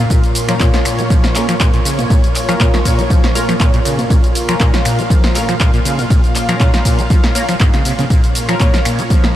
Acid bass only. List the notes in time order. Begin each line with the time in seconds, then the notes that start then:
0.10 A#2
0.49 F3
0.60 A#2
0.74 F3
0.85 A#2
0.99 A#3
1.10 F3
1.35 A#3
1.49 F3
1.60 A#2
1.74 A#2
1.85 C#3
1.99 A#2
2.10 A#2
2.49 F3
2.60 A#2
2.74 F3
2.85 A#2
2.99 A#3
3.10 F3
3.35 A#3
3.49 F3
3.60 A#2
3.74 A#2
3.85 C#3
3.99 A#2
4.10 A#2
4.49 F3
4.60 A#2
4.74 F3
4.85 A#2
4.99 A#3
5.10 F3
5.35 A#3
5.49 F3
5.60 A#2
5.74 A#2
5.85 C#3
5.99 A#2
6.10 A#2
6.49 F3
6.60 A#2
6.74 F3
6.85 A#2
6.99 A#3
7.10 F3
7.35 A#3
7.49 F3
7.60 G#2
7.74 C#3
7.85 C3
7.99 C#3
8.10 A#2
8.49 F3
8.60 A#2
8.74 F3
8.85 A#2
8.99 A#3
9.10 F3